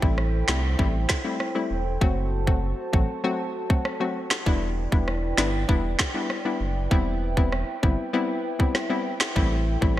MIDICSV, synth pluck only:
0, 0, Header, 1, 2, 480
1, 0, Start_track
1, 0, Key_signature, 1, "minor"
1, 0, Tempo, 612245
1, 1579, Time_signature, 4, 2, 24, 8
1, 7839, End_track
2, 0, Start_track
2, 0, Title_t, "Synth pluck"
2, 0, Program_c, 0, 84
2, 16, Note_on_c, 0, 55, 78
2, 18, Note_on_c, 0, 57, 70
2, 19, Note_on_c, 0, 60, 69
2, 21, Note_on_c, 0, 64, 85
2, 154, Note_off_c, 0, 55, 0
2, 155, Note_off_c, 0, 57, 0
2, 156, Note_off_c, 0, 60, 0
2, 156, Note_off_c, 0, 64, 0
2, 377, Note_on_c, 0, 55, 74
2, 378, Note_on_c, 0, 57, 68
2, 379, Note_on_c, 0, 60, 65
2, 381, Note_on_c, 0, 64, 84
2, 514, Note_off_c, 0, 55, 0
2, 515, Note_off_c, 0, 57, 0
2, 516, Note_off_c, 0, 60, 0
2, 517, Note_off_c, 0, 64, 0
2, 616, Note_on_c, 0, 55, 91
2, 618, Note_on_c, 0, 57, 82
2, 620, Note_on_c, 0, 60, 79
2, 621, Note_on_c, 0, 64, 95
2, 754, Note_off_c, 0, 55, 0
2, 755, Note_off_c, 0, 57, 0
2, 756, Note_off_c, 0, 60, 0
2, 757, Note_off_c, 0, 64, 0
2, 976, Note_on_c, 0, 55, 75
2, 977, Note_on_c, 0, 57, 66
2, 979, Note_on_c, 0, 60, 68
2, 980, Note_on_c, 0, 64, 83
2, 1114, Note_off_c, 0, 55, 0
2, 1115, Note_off_c, 0, 57, 0
2, 1116, Note_off_c, 0, 60, 0
2, 1116, Note_off_c, 0, 64, 0
2, 1215, Note_on_c, 0, 55, 75
2, 1216, Note_on_c, 0, 57, 68
2, 1218, Note_on_c, 0, 60, 69
2, 1219, Note_on_c, 0, 64, 88
2, 1353, Note_off_c, 0, 55, 0
2, 1354, Note_off_c, 0, 57, 0
2, 1355, Note_off_c, 0, 60, 0
2, 1356, Note_off_c, 0, 64, 0
2, 1576, Note_on_c, 0, 54, 92
2, 1578, Note_on_c, 0, 57, 88
2, 1580, Note_on_c, 0, 60, 85
2, 1581, Note_on_c, 0, 66, 100
2, 1908, Note_off_c, 0, 54, 0
2, 1910, Note_off_c, 0, 57, 0
2, 1911, Note_off_c, 0, 60, 0
2, 1911, Note_off_c, 0, 66, 0
2, 1936, Note_on_c, 0, 54, 74
2, 1937, Note_on_c, 0, 57, 69
2, 1939, Note_on_c, 0, 60, 69
2, 1941, Note_on_c, 0, 66, 83
2, 2074, Note_off_c, 0, 54, 0
2, 2075, Note_off_c, 0, 57, 0
2, 2076, Note_off_c, 0, 60, 0
2, 2076, Note_off_c, 0, 66, 0
2, 2295, Note_on_c, 0, 54, 78
2, 2297, Note_on_c, 0, 57, 66
2, 2299, Note_on_c, 0, 60, 66
2, 2300, Note_on_c, 0, 66, 82
2, 2434, Note_off_c, 0, 54, 0
2, 2435, Note_off_c, 0, 57, 0
2, 2436, Note_off_c, 0, 60, 0
2, 2436, Note_off_c, 0, 66, 0
2, 2538, Note_on_c, 0, 54, 85
2, 2539, Note_on_c, 0, 57, 83
2, 2541, Note_on_c, 0, 60, 82
2, 2542, Note_on_c, 0, 66, 101
2, 2675, Note_off_c, 0, 54, 0
2, 2676, Note_off_c, 0, 57, 0
2, 2677, Note_off_c, 0, 60, 0
2, 2677, Note_off_c, 0, 66, 0
2, 2897, Note_on_c, 0, 54, 70
2, 2899, Note_on_c, 0, 57, 68
2, 2900, Note_on_c, 0, 60, 67
2, 2901, Note_on_c, 0, 66, 83
2, 3035, Note_off_c, 0, 54, 0
2, 3035, Note_off_c, 0, 57, 0
2, 3036, Note_off_c, 0, 60, 0
2, 3037, Note_off_c, 0, 66, 0
2, 3137, Note_on_c, 0, 54, 73
2, 3138, Note_on_c, 0, 57, 72
2, 3140, Note_on_c, 0, 60, 70
2, 3141, Note_on_c, 0, 66, 87
2, 3275, Note_off_c, 0, 54, 0
2, 3275, Note_off_c, 0, 57, 0
2, 3276, Note_off_c, 0, 60, 0
2, 3277, Note_off_c, 0, 66, 0
2, 3497, Note_on_c, 0, 55, 92
2, 3499, Note_on_c, 0, 59, 85
2, 3501, Note_on_c, 0, 62, 88
2, 3503, Note_on_c, 0, 64, 107
2, 3829, Note_off_c, 0, 55, 0
2, 3830, Note_off_c, 0, 59, 0
2, 3831, Note_off_c, 0, 62, 0
2, 3832, Note_off_c, 0, 64, 0
2, 3855, Note_on_c, 0, 55, 77
2, 3857, Note_on_c, 0, 59, 67
2, 3859, Note_on_c, 0, 62, 70
2, 3860, Note_on_c, 0, 64, 84
2, 3994, Note_off_c, 0, 55, 0
2, 3995, Note_off_c, 0, 59, 0
2, 3995, Note_off_c, 0, 62, 0
2, 3996, Note_off_c, 0, 64, 0
2, 4216, Note_on_c, 0, 55, 72
2, 4216, Note_on_c, 0, 59, 66
2, 4218, Note_on_c, 0, 62, 69
2, 4220, Note_on_c, 0, 64, 80
2, 4354, Note_off_c, 0, 55, 0
2, 4354, Note_off_c, 0, 59, 0
2, 4355, Note_off_c, 0, 62, 0
2, 4356, Note_off_c, 0, 64, 0
2, 4457, Note_on_c, 0, 55, 89
2, 4458, Note_on_c, 0, 59, 83
2, 4460, Note_on_c, 0, 62, 81
2, 4461, Note_on_c, 0, 64, 104
2, 4594, Note_off_c, 0, 55, 0
2, 4595, Note_off_c, 0, 59, 0
2, 4596, Note_off_c, 0, 62, 0
2, 4597, Note_off_c, 0, 64, 0
2, 4816, Note_on_c, 0, 55, 78
2, 4818, Note_on_c, 0, 59, 69
2, 4819, Note_on_c, 0, 62, 70
2, 4821, Note_on_c, 0, 64, 80
2, 4954, Note_off_c, 0, 55, 0
2, 4955, Note_off_c, 0, 59, 0
2, 4956, Note_off_c, 0, 62, 0
2, 4956, Note_off_c, 0, 64, 0
2, 5057, Note_on_c, 0, 55, 76
2, 5058, Note_on_c, 0, 59, 70
2, 5060, Note_on_c, 0, 62, 69
2, 5061, Note_on_c, 0, 64, 84
2, 5195, Note_off_c, 0, 55, 0
2, 5195, Note_off_c, 0, 59, 0
2, 5196, Note_off_c, 0, 62, 0
2, 5197, Note_off_c, 0, 64, 0
2, 5417, Note_on_c, 0, 55, 96
2, 5419, Note_on_c, 0, 59, 86
2, 5421, Note_on_c, 0, 60, 89
2, 5422, Note_on_c, 0, 64, 102
2, 5749, Note_off_c, 0, 55, 0
2, 5750, Note_off_c, 0, 59, 0
2, 5751, Note_off_c, 0, 60, 0
2, 5752, Note_off_c, 0, 64, 0
2, 5778, Note_on_c, 0, 55, 75
2, 5779, Note_on_c, 0, 59, 70
2, 5781, Note_on_c, 0, 60, 72
2, 5783, Note_on_c, 0, 64, 89
2, 5915, Note_off_c, 0, 55, 0
2, 5916, Note_off_c, 0, 59, 0
2, 5917, Note_off_c, 0, 60, 0
2, 5918, Note_off_c, 0, 64, 0
2, 6137, Note_on_c, 0, 55, 73
2, 6138, Note_on_c, 0, 59, 70
2, 6139, Note_on_c, 0, 60, 68
2, 6141, Note_on_c, 0, 64, 85
2, 6275, Note_off_c, 0, 55, 0
2, 6275, Note_off_c, 0, 59, 0
2, 6276, Note_off_c, 0, 60, 0
2, 6277, Note_off_c, 0, 64, 0
2, 6376, Note_on_c, 0, 55, 92
2, 6376, Note_on_c, 0, 59, 87
2, 6379, Note_on_c, 0, 60, 87
2, 6380, Note_on_c, 0, 64, 98
2, 6514, Note_off_c, 0, 55, 0
2, 6514, Note_off_c, 0, 59, 0
2, 6516, Note_off_c, 0, 60, 0
2, 6516, Note_off_c, 0, 64, 0
2, 6736, Note_on_c, 0, 55, 76
2, 6737, Note_on_c, 0, 59, 72
2, 6740, Note_on_c, 0, 60, 69
2, 6741, Note_on_c, 0, 64, 84
2, 6874, Note_off_c, 0, 55, 0
2, 6875, Note_off_c, 0, 59, 0
2, 6876, Note_off_c, 0, 60, 0
2, 6876, Note_off_c, 0, 64, 0
2, 6974, Note_on_c, 0, 55, 77
2, 6975, Note_on_c, 0, 59, 70
2, 6977, Note_on_c, 0, 60, 71
2, 6979, Note_on_c, 0, 64, 86
2, 7113, Note_off_c, 0, 55, 0
2, 7114, Note_off_c, 0, 59, 0
2, 7115, Note_off_c, 0, 60, 0
2, 7115, Note_off_c, 0, 64, 0
2, 7335, Note_on_c, 0, 55, 94
2, 7336, Note_on_c, 0, 57, 87
2, 7338, Note_on_c, 0, 60, 85
2, 7339, Note_on_c, 0, 64, 103
2, 7668, Note_off_c, 0, 55, 0
2, 7668, Note_off_c, 0, 57, 0
2, 7669, Note_off_c, 0, 60, 0
2, 7670, Note_off_c, 0, 64, 0
2, 7693, Note_on_c, 0, 55, 78
2, 7696, Note_on_c, 0, 57, 69
2, 7697, Note_on_c, 0, 60, 69
2, 7698, Note_on_c, 0, 64, 87
2, 7833, Note_off_c, 0, 55, 0
2, 7834, Note_off_c, 0, 57, 0
2, 7834, Note_off_c, 0, 60, 0
2, 7835, Note_off_c, 0, 64, 0
2, 7839, End_track
0, 0, End_of_file